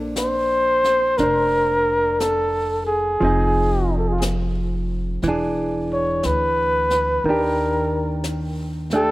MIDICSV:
0, 0, Header, 1, 5, 480
1, 0, Start_track
1, 0, Key_signature, -2, "major"
1, 0, Tempo, 1008403
1, 1527, Time_signature, 4, 2, 24, 8
1, 4338, End_track
2, 0, Start_track
2, 0, Title_t, "Trumpet"
2, 0, Program_c, 0, 56
2, 88, Note_on_c, 0, 72, 82
2, 560, Note_on_c, 0, 70, 84
2, 568, Note_off_c, 0, 72, 0
2, 1046, Note_on_c, 0, 69, 76
2, 1053, Note_off_c, 0, 70, 0
2, 1362, Note_off_c, 0, 69, 0
2, 1364, Note_on_c, 0, 68, 65
2, 1898, Note_on_c, 0, 69, 51
2, 1905, Note_off_c, 0, 68, 0
2, 1944, Note_on_c, 0, 68, 55
2, 1951, Note_off_c, 0, 69, 0
2, 1960, Note_on_c, 0, 65, 53
2, 1967, Note_off_c, 0, 68, 0
2, 1995, Note_on_c, 0, 68, 54
2, 2002, Note_off_c, 0, 65, 0
2, 2015, Note_off_c, 0, 68, 0
2, 2822, Note_on_c, 0, 73, 70
2, 2977, Note_on_c, 0, 71, 77
2, 2985, Note_off_c, 0, 73, 0
2, 3450, Note_on_c, 0, 70, 72
2, 3457, Note_off_c, 0, 71, 0
2, 3925, Note_off_c, 0, 70, 0
2, 4254, Note_on_c, 0, 69, 78
2, 4338, Note_off_c, 0, 69, 0
2, 4338, End_track
3, 0, Start_track
3, 0, Title_t, "Hollow-body jazz guitar"
3, 0, Program_c, 1, 26
3, 0, Note_on_c, 1, 58, 40
3, 0, Note_on_c, 1, 62, 46
3, 0, Note_on_c, 1, 72, 41
3, 566, Note_off_c, 1, 62, 0
3, 572, Note_on_c, 1, 62, 31
3, 580, Note_off_c, 1, 72, 0
3, 586, Note_on_c, 1, 72, 36
3, 1524, Note_off_c, 1, 58, 0
3, 1526, Note_on_c, 1, 53, 41
3, 1532, Note_off_c, 1, 62, 0
3, 1536, Note_on_c, 1, 60, 40
3, 1539, Note_off_c, 1, 72, 0
3, 1545, Note_on_c, 1, 63, 47
3, 1555, Note_on_c, 1, 68, 43
3, 2487, Note_off_c, 1, 53, 0
3, 2492, Note_off_c, 1, 60, 0
3, 2493, Note_on_c, 1, 52, 43
3, 2496, Note_off_c, 1, 63, 0
3, 2501, Note_off_c, 1, 68, 0
3, 2513, Note_on_c, 1, 62, 50
3, 2517, Note_on_c, 1, 68, 45
3, 3448, Note_off_c, 1, 52, 0
3, 3454, Note_on_c, 1, 51, 40
3, 3458, Note_off_c, 1, 62, 0
3, 3460, Note_off_c, 1, 68, 0
3, 3470, Note_on_c, 1, 62, 42
3, 3475, Note_on_c, 1, 67, 42
3, 4249, Note_off_c, 1, 62, 0
3, 4250, Note_on_c, 1, 57, 35
3, 4254, Note_on_c, 1, 62, 35
3, 4258, Note_off_c, 1, 67, 0
3, 4264, Note_on_c, 1, 67, 36
3, 4338, Note_off_c, 1, 51, 0
3, 4338, Note_off_c, 1, 57, 0
3, 4338, Note_off_c, 1, 62, 0
3, 4338, Note_off_c, 1, 67, 0
3, 4338, End_track
4, 0, Start_track
4, 0, Title_t, "Upright bass"
4, 0, Program_c, 2, 32
4, 0, Note_on_c, 2, 34, 67
4, 544, Note_off_c, 2, 34, 0
4, 567, Note_on_c, 2, 29, 66
4, 1510, Note_off_c, 2, 29, 0
4, 1531, Note_on_c, 2, 29, 68
4, 2470, Note_off_c, 2, 29, 0
4, 2489, Note_on_c, 2, 28, 72
4, 2948, Note_off_c, 2, 28, 0
4, 2974, Note_on_c, 2, 38, 58
4, 3430, Note_off_c, 2, 38, 0
4, 3447, Note_on_c, 2, 39, 64
4, 4338, Note_off_c, 2, 39, 0
4, 4338, End_track
5, 0, Start_track
5, 0, Title_t, "Drums"
5, 75, Note_on_c, 9, 25, 28
5, 75, Note_on_c, 9, 38, 40
5, 75, Note_on_c, 9, 44, 49
5, 123, Note_off_c, 9, 38, 0
5, 123, Note_off_c, 9, 44, 0
5, 401, Note_on_c, 9, 38, 23
5, 448, Note_off_c, 9, 38, 0
5, 560, Note_off_c, 9, 25, 0
5, 560, Note_on_c, 9, 25, 30
5, 560, Note_on_c, 9, 38, 24
5, 608, Note_off_c, 9, 38, 0
5, 1048, Note_off_c, 9, 25, 0
5, 1048, Note_on_c, 9, 25, 29
5, 1048, Note_on_c, 9, 38, 37
5, 1048, Note_on_c, 9, 44, 45
5, 1095, Note_off_c, 9, 38, 0
5, 1095, Note_off_c, 9, 44, 0
5, 1526, Note_off_c, 9, 25, 0
5, 1526, Note_on_c, 9, 25, 28
5, 2007, Note_off_c, 9, 25, 0
5, 2007, Note_on_c, 9, 25, 32
5, 2007, Note_on_c, 9, 38, 36
5, 2007, Note_on_c, 9, 44, 52
5, 2055, Note_off_c, 9, 38, 0
5, 2055, Note_off_c, 9, 44, 0
5, 2485, Note_off_c, 9, 25, 0
5, 2485, Note_on_c, 9, 25, 33
5, 2485, Note_on_c, 9, 38, 22
5, 2533, Note_off_c, 9, 38, 0
5, 2966, Note_off_c, 9, 25, 0
5, 2966, Note_on_c, 9, 25, 26
5, 2966, Note_on_c, 9, 38, 35
5, 2966, Note_on_c, 9, 44, 37
5, 3013, Note_off_c, 9, 38, 0
5, 3013, Note_off_c, 9, 44, 0
5, 3285, Note_on_c, 9, 38, 26
5, 3333, Note_off_c, 9, 38, 0
5, 3442, Note_off_c, 9, 25, 0
5, 3442, Note_on_c, 9, 25, 35
5, 3921, Note_off_c, 9, 25, 0
5, 3921, Note_on_c, 9, 25, 36
5, 3921, Note_on_c, 9, 38, 37
5, 3921, Note_on_c, 9, 44, 47
5, 3968, Note_off_c, 9, 38, 0
5, 3968, Note_off_c, 9, 44, 0
5, 4237, Note_on_c, 9, 38, 24
5, 4284, Note_off_c, 9, 38, 0
5, 4338, Note_off_c, 9, 25, 0
5, 4338, End_track
0, 0, End_of_file